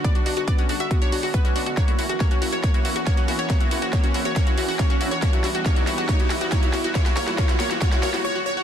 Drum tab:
HH |xxoxxxoxxxooxxox|xxoxxxoxxxoxxxox|xxoxxxoxxxooxxox|xxoxxxoxxxoxxxox|
SD |----------------|o---o---o---o---|o---o---o---o---|o-o-o-o-o-o-o-o-|
BD |o---o---o---o---|o---o---o---o---|o---o---o---o---|o---o---o---o---|

HH |xxoxxxoxxxoo----|
SD |oooooooooooo----|
BD |o---o---o-------|